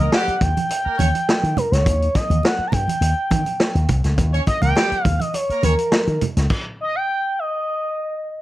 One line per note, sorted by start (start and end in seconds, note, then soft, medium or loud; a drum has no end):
0.00 0.15 D#5 loud
0.12 0.35 G3 loud
0.12 0.35 G4 loud
0.12 0.43 F#5 loud
0.12 snare loud
0.12 muted conga soft
0.28 muted slap bass stroke soft
0.28 closed hi-hat soft
0.41 0.52 D#2 medium
0.41 1.58 G5 loud
0.41 kick loud
0.41 closed hi-hat medium
0.41 low conga medium
0.57 closed hi-hat medium
0.57 high conga medium
0.69 closed hi-hat medium
0.69 muted conga soft
0.85 0.96 A#3 medium
0.85 0.96 A#4 medium
0.85 muted slap bass stroke soft
0.98 1.10 D#2 medium
0.98 1.07 C#4 medium
0.98 1.08 C#5 medium
0.98 closed hi-hat medium
0.98 muted conga soft
0.98 high conga medium
1.15 closed hi-hat medium
1.15 high conga medium
1.29 snare loud
1.43 1.53 D#3 loud
1.43 closed hi-hat soft
1.57 1.73 A#4 medium
1.57 closed hi-hat medium
1.57 muted conga soft
1.57 low conga medium
1.71 1.82 C#2 medium
1.71 2.17 C#5 medium
1.71 snare soft
1.71 closed hi-hat medium
1.86 2.07 D#2 loud
1.86 kick loud
1.86 closed hi-hat loud
1.86 muted conga soft
1.86 low conga medium
2.02 closed hi-hat soft
2.15 2.46 D#5 medium
2.15 kick medium
2.15 snare soft
2.15 closed hi-hat medium
2.15 muted conga soft
2.30 2.40 D#2 medium
2.30 closed hi-hat soft
2.30 high conga medium
2.43 2.69 F#5 medium
2.43 snare loud
2.43 muted conga soft
2.59 muted slap bass stroke medium
2.67 2.74 A#5 medium
2.72 2.84 G2 medium
2.72 3.89 G5 loud
2.72 kick medium
2.72 closed hi-hat medium
2.72 low conga medium
2.88 closed hi-hat medium
2.88 high conga medium
3.01 3.12 D#2 medium
3.01 closed hi-hat medium
3.01 muted conga soft
3.31 3.42 D#3 medium
3.31 kick loud
3.31 closed hi-hat medium
3.31 muted conga soft
3.31 high conga medium
3.45 closed hi-hat medium
3.45 high conga soft
3.60 snare loud
3.75 3.85 D#2 loud
3.75 closed hi-hat soft
3.88 4.00 C2 medium
3.88 kick medium
3.88 closed hi-hat medium
3.88 muted conga soft
3.88 low conga medium
4.04 4.14 C#2 medium
4.04 snare soft
4.04 closed hi-hat medium
4.18 4.39 D#2 loud
4.18 kick loud
4.18 closed hi-hat loud
4.18 low conga medium
4.33 4.41 C#4 medium
4.33 4.41 C#5 medium
4.33 closed hi-hat soft
4.47 4.61 D#5 loud
4.47 kick medium
4.47 closed hi-hat medium
4.47 muted conga soft
4.62 4.72 C#2 medium
4.62 4.73 A#3 medium
4.62 4.73 A#4 medium
4.62 5.04 G5 loud
4.62 closed hi-hat soft
4.62 high conga medium
4.76 4.99 G3 medium
4.76 4.99 G4 loud
4.76 snare loud
4.76 muted conga soft
4.92 muted slap bass stroke soft
4.92 closed hi-hat soft
5.04 5.16 D#2 medium
5.04 5.21 F5 loud
5.04 kick medium
5.04 closed hi-hat medium
5.04 low conga medium
5.19 5.35 D#5 loud
5.19 closed hi-hat medium
5.19 high conga medium
5.34 5.65 C#5 medium
5.34 closed hi-hat medium
5.34 muted conga soft
5.49 5.61 A#3 medium
5.49 5.61 A#4 medium
5.49 muted slap bass stroke soft
5.49 closed hi-hat soft
5.63 5.74 D#2 medium
5.63 5.73 C#4 medium
5.63 6.21 A#4 medium
5.63 5.73 C#5 medium
5.63 closed hi-hat medium
5.63 muted conga soft
5.63 high conga medium
5.78 closed hi-hat medium
5.78 high conga soft
5.92 snare loud
5.92 muted conga soft
6.07 6.17 D#3 loud
6.07 closed hi-hat soft
6.21 closed hi-hat medium
6.21 muted conga soft
6.21 low conga medium
6.37 6.46 C#2 medium
6.37 snare soft
6.37 closed hi-hat medium
6.50 kick loud
6.50 crash medium
6.81 6.97 D#5 loud
6.95 7.41 G5 loud
7.39 8.42 D#5 loud